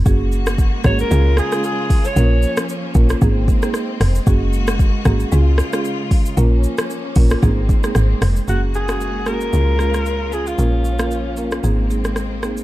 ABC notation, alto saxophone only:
X:1
M:4/4
L:1/16
Q:"Swing 16ths" 1/4=114
K:Db
V:1 name="Alto saxophone"
z6 d B3 A2 A3 d- | d3 z12 z | z16 | z16 |
G2 A4 B8 A F- | F6- F z8 z |]